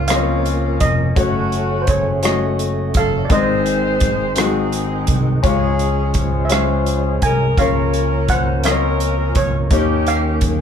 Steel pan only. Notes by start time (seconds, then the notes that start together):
0.08 F5
0.81 D#5
1.82 C5
1.89 C#5
2.97 F5
3.25 D5
3.32 D#5
6.45 E5
6.52 F5
7.23 G#5
7.59 F5
8.30 F#5
8.65 F5
9.37 C#5
10.08 F5